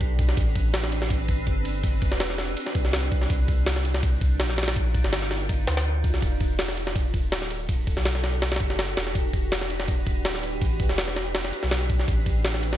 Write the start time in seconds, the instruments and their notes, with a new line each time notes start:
Already playing: sub bass B1, ambient pad C4 D4 G4 B4
0.01 kick, ride
0.19 kick, ride
0.29 snare
0.37 sub bass A1, kick, ride
0.56 kick, ride
0.74 snare, ride
0.84 snare
0.92 ride
1.02 snare
1.10 kick, ride
1.28 kick, ride
1.47 sub bass G1, kick, ride
1.65 ride
1.83 kick, ride
2.02 kick, ride
2.12 sub bass E1, snare
2.20 snare, ride
2.30 snare
2.38 snare, ride
2.57 ambient pad D#4 F4 A#4, ride
2.66 snare
2.75 sub bass C2, kick, ride
2.85 snare
2.93 snare, ride
3.12 sub bass C2, kick, ride
3.22 snare
3.30 sub bass C2, kick, ride
3.48 kick, ride
3.66 snare, ride
3.76 snare
3.85 ride
3.94 snare
4.03 kick, ride
4.21 kick, ride
4.40 sub bass A#1, snare, ride
4.50 snare
4.58 snare, ride
4.63 snare, ride
4.68 snare, ride
4.76 kick, ride
4.94 kick, ride
5.04 sub bass G1, snare
5.13 snare, ride
5.22 snare
5.31 snare, ride
5.49 kick, ride
5.67 sub bass D2, snare, ride
5.77 snare, ride
6.04 kick, ride
6.14 sub bass C2, snare
6.22 sub bass E1, ambient pad D4 F#4 G4 A4, kick, ride
6.40 kick, ride
6.59 snare, ride
6.69 snare
6.77 ride
6.87 snare
6.96 kick, ride
7.14 kick, ride
7.32 sub bass D1, snare, ride
7.42 snare
7.50 ride
7.69 kick, ride
7.87 kick, ride
7.97 sub bass B1, snare
8.05 snare, ride
8.15 snare
8.24 snare, ride
8.42 ambient pad B4, snare, ride
8.52 snare, ride
8.56 snare, ride
8.60 sub bass F#1, kick, ride
8.70 snare
8.79 snare, ride
8.97 sub bass E1, snare, ride
9.07 snare
9.15 sub bass E1, kick, ride
9.33 kick, ride
9.52 snare, ride
9.62 snare
9.70 ride
9.80 snare
9.88 kick, ride
10.07 kick, ride
10.25 sub bass D1, snare, ride
10.35 snare
10.43 ride
10.61 sub bass A1, ambient pad C4 B4, kick, ride
10.80 kick, ride
10.89 sub bass E1, snare
10.98 snare, ride
11.08 snare
11.16 snare, ride
11.35 snare, ride
11.45 snare
11.53 ride
11.63 sub bass B1, snare
11.71 snare, ride
11.90 kick, ride
12.00 snare
12.08 sub bass A1, kick, ride
12.26 kick, ride
12.45 snare, ride
12.54 snare
12.63 ride
12.73 snare